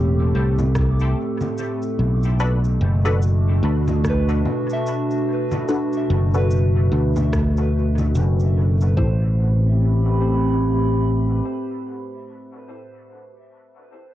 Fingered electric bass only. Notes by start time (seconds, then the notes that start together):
Already playing: E1
0.35 C2
1.99 B1
2.81 F#1
3.63 D2
6.10 F#1
6.92 D2
8.15 F#1
8.97 A1